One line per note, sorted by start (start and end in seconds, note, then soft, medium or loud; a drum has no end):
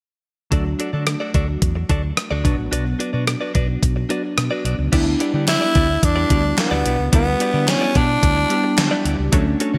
0.51 0.73 D2 medium
0.51 2.40 F#3 medium
0.51 2.41 A3 medium
0.51 0.65 D4 medium
0.51 2.41 D4 medium
0.51 0.65 F#4 medium
0.51 2.41 F#4 medium
0.51 0.65 A4 medium
0.51 0.64 D5 medium
0.51 kick loud
0.51 closed hi-hat medium
0.65 muted clean electric guitar stroke soft
0.79 0.90 D4 medium
0.79 0.90 F#4 medium
0.79 0.90 A4 medium
0.79 0.90 D5 medium
0.79 closed hi-hat medium
0.93 1.14 D3 medium
0.93 1.04 D4 soft
0.93 1.04 F#4 soft
0.93 1.04 A4 medium
0.93 1.03 D5 medium
1.07 cross-stick loud
1.07 closed hi-hat medium
1.20 1.32 D4 soft
1.20 1.31 F#4 soft
1.20 1.31 A4 soft
1.20 1.31 D5 medium
1.34 1.55 D2 medium
1.34 1.47 D4 medium
1.34 1.48 F#4 medium
1.34 1.47 A4 medium
1.34 1.47 D5 medium
1.34 kick medium
1.34 closed hi-hat medium
1.48 muted clean electric guitar stroke soft
1.62 1.83 E2 medium
1.62 kick medium
1.62 closed hi-hat medium
1.75 muted clean electric guitar stroke soft
1.89 2.10 D2 medium
1.89 2.03 D4 medium
1.89 2.03 F#4 medium
1.89 2.03 A4 medium
1.89 2.02 D5 medium
1.89 kick medium
1.89 closed hi-hat medium
2.03 muted clean electric guitar stroke soft
2.17 muted clean electric guitar stroke soft
2.17 cross-stick loud
2.17 closed hi-hat medium
2.31 2.41 D2 medium
2.31 2.43 D4 medium
2.31 2.43 F#4 medium
2.31 2.44 A4 medium
2.31 2.44 D5 medium
2.44 2.55 B1 medium
2.44 4.06 F#3 medium
2.44 4.06 B3 medium
2.44 2.55 D4 medium
2.44 4.07 D4 medium
2.44 2.55 F#4 medium
2.44 4.07 F#4 medium
2.44 2.55 B4 medium
2.44 2.55 D5 medium
2.44 kick loud
2.44 closed hi-hat medium
2.58 2.69 A1 medium
2.58 muted clean electric guitar stroke soft
2.72 2.93 B1 medium
2.72 2.85 D4 medium
2.72 2.85 F#4 medium
2.72 2.85 B4 medium
2.72 2.84 D5 medium
2.72 closed hi-hat medium
2.85 muted clean electric guitar stroke soft
2.99 3.10 D4 medium
2.99 3.10 F#4 medium
2.99 3.10 B4 medium
2.99 3.10 D5 medium
2.99 closed hi-hat medium
3.13 3.34 B2 medium
3.13 3.24 D4 soft
3.13 3.24 F#4 soft
3.13 3.24 B4 medium
3.13 3.24 D5 medium
3.27 muted clean electric guitar stroke soft
3.27 cross-stick loud
3.27 closed hi-hat medium
3.41 3.52 D4 soft
3.41 3.52 F#4 soft
3.41 3.51 B4 medium
3.41 3.51 D5 medium
3.54 3.76 B1 medium
3.54 3.68 D4 medium
3.54 3.68 F#4 medium
3.54 3.68 B4 medium
3.54 3.67 D5 medium
3.54 kick medium
3.54 closed hi-hat medium
3.68 muted clean electric guitar stroke soft
3.83 4.03 B1 medium
3.83 kick medium
3.83 closed hi-hat medium
3.96 muted clean electric guitar stroke soft
4.09 4.92 F#3 soft
4.09 4.91 B3 soft
4.09 4.23 D4 medium
4.09 4.92 D4 soft
4.09 4.23 F#4 medium
4.09 4.93 F#4 medium
4.09 4.23 B4 medium
4.09 4.22 D5 medium
4.09 closed hi-hat medium
4.23 muted clean electric guitar stroke soft
4.37 4.48 B2 medium
4.37 muted clean electric guitar stroke soft
4.37 cross-stick loud
4.37 closed hi-hat medium
4.51 4.63 D4 medium
4.51 4.64 F#4 medium
4.51 4.64 B4 medium
4.51 4.64 D5 medium
4.65 4.75 B1 medium
4.65 4.75 D4 medium
4.65 4.75 F#4 medium
4.65 4.76 B4 medium
4.65 4.76 D5 medium
4.65 closed hi-hat medium
4.79 4.89 C#2 medium
4.79 muted clean electric guitar stroke soft
4.92 5.13 D2 loud
4.92 5.82 G3 medium
4.92 5.05 B3 medium
4.92 5.82 B3 medium
4.92 5.82 D4 medium
4.92 5.06 E4 medium
4.92 5.83 E4 loud
4.92 5.06 G4 medium
4.92 5.05 D5 medium
4.92 kick loud
4.92 closed hi-hat loud
4.92 crash medium
5.06 muted clean electric guitar stroke soft
5.20 5.30 B3 medium
5.20 5.30 E4 medium
5.20 5.31 G4 medium
5.20 5.31 D5 medium
5.20 closed hi-hat medium
5.34 5.54 D3 medium
5.34 5.45 B3 soft
5.34 5.45 E4 medium
5.34 5.44 G4 medium
5.34 5.44 D5 medium
5.48 6.06 E4 loud
5.48 snare loud
5.48 clap medium
5.48 closed hi-hat medium
5.61 5.72 B3 medium
5.61 5.72 E4 medium
5.61 5.72 G4 medium
5.61 5.71 D5 medium
5.75 5.96 D2 medium
5.75 5.88 B3 medium
5.75 5.88 E4 medium
5.75 5.89 G4 medium
5.75 5.88 D5 medium
5.75 kick medium
5.75 closed hi-hat medium
5.89 muted clean electric guitar stroke soft
6.02 6.23 E2 medium
6.02 6.59 D4 loud
6.02 muted clean electric guitar stroke soft
6.02 kick medium
6.02 closed hi-hat medium
6.16 6.28 B3 medium
6.16 6.29 E4 medium
6.16 6.29 G4 medium
6.16 6.29 D5 medium
6.30 6.51 D2 medium
6.30 6.97 G3 medium
6.30 6.40 B3 medium
6.30 6.97 B3 medium
6.30 6.97 D4 medium
6.30 6.40 E4 medium
6.30 6.98 F#4 medium
6.30 6.41 G4 medium
6.30 6.41 D5 medium
6.30 kick medium
6.30 closed hi-hat medium
6.44 muted clean electric guitar stroke soft
6.58 7.10 B3 medium
6.58 muted clean electric guitar stroke soft
6.58 snare loud
6.58 clap medium
6.58 closed hi-hat medium
6.71 6.82 D2 medium
6.71 6.84 B3 medium
6.71 6.84 E4 medium
6.71 6.85 G4 medium
6.71 6.84 D5 medium
6.85 6.96 B1 medium
6.85 6.95 B3 medium
6.85 6.96 E4 medium
6.85 6.96 G4 medium
6.85 6.96 D5 medium
6.85 closed hi-hat medium
6.99 7.09 C#2 medium
6.99 muted clean electric guitar stroke soft
7.12 7.34 D2 loud
7.12 8.02 G3 medium
7.12 7.26 B3 medium
7.12 8.02 B3 medium
7.12 7.72 B3 loud
7.12 8.02 D4 medium
7.12 7.26 E4 medium
7.12 8.03 E4 medium
7.12 7.26 G4 medium
7.12 7.25 D5 medium
7.12 kick loud
7.12 closed hi-hat medium
7.26 muted clean electric guitar stroke soft
7.40 7.50 B3 medium
7.40 7.51 E4 medium
7.40 7.51 G4 medium
7.40 7.51 D5 medium
7.40 closed hi-hat medium
7.53 7.75 D3 medium
7.53 7.65 B3 soft
7.53 7.64 E4 soft
7.53 7.64 G4 medium
7.53 7.64 D5 medium
7.68 7.99 C#4 medium
7.68 snare loud
7.68 clap medium
7.68 closed hi-hat medium
7.81 7.92 B3 medium
7.81 7.92 E4 medium
7.81 7.92 G4 medium
7.81 7.92 D5 medium
7.95 8.16 B2 medium
7.95 8.08 B3 medium
7.95 9.06 D4 medium
7.95 8.08 E4 medium
7.95 8.09 G4 medium
7.95 8.08 D5 medium
7.95 kick medium
7.95 closed hi-hat medium
8.09 muted clean electric guitar stroke soft
8.23 8.44 D2 medium
8.23 muted clean electric guitar stroke soft
8.23 kick medium
8.23 closed hi-hat medium
8.37 muted clean electric guitar stroke soft
8.50 9.17 G3 medium
8.50 9.17 B3 medium
8.50 9.18 D4 medium
8.50 9.18 G4 medium
8.50 closed hi-hat medium
8.64 muted clean electric guitar stroke soft
8.78 8.88 D3 medium
8.78 muted clean electric guitar stroke soft
8.78 snare loud
8.78 clap medium
8.78 closed hi-hat medium
8.91 9.04 B3 medium
8.91 9.04 E4 medium
8.91 9.05 G4 medium
8.91 9.04 D5 medium
9.05 9.15 D2 medium
9.05 9.15 B3 medium
9.05 9.16 E4 medium
9.05 9.16 G4 medium
9.05 9.16 D5 medium
9.05 closed hi-hat medium
9.19 9.29 C#2 medium
9.19 muted clean electric guitar stroke soft
9.32 9.54 D2 loud
9.32 9.78 F#3 medium
9.32 9.78 A3 medium
9.32 9.46 C#4 medium
9.32 9.78 C#4 medium
9.32 9.78 D4 medium
9.32 9.46 F#4 medium
9.32 9.46 A4 medium
9.32 9.45 C#5 medium
9.32 kick loud
9.32 closed hi-hat medium
9.46 muted clean electric guitar stroke soft
9.60 9.70 C#4 medium
9.60 9.71 F#4 medium
9.60 9.71 A4 medium
9.60 9.71 C#5 medium
9.60 closed hi-hat medium
9.74 9.78 D3 loud
9.74 9.78 C#4 soft
9.74 9.78 F#4 medium
9.74 9.78 A4 medium
9.74 9.78 C#5 medium